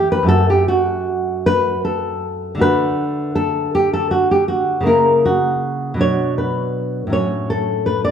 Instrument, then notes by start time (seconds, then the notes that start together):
nylon-string guitar
Already playing: E3 A3 G4
0.12 B4
0.23 F#2 A3
0.27 F#4 A4
0.50 G4
0.68 F#4
1.46 B4
1.85 A4
2.55 D3 A3
2.59 F#4 B4
3.35 A4
3.75 G4
3.93 A4
4.11 F#4
4.31 G4
4.48 F#4
4.81 C#3 A#3
4.86 E4 A#4
5.25 F#4
5.94 B2 F#3
5.99 D4 C#5
6.38 B4
7.07 A2 F#3
7.12 C#4 C#5
7.50 A4
7.86 B4
8.05 D5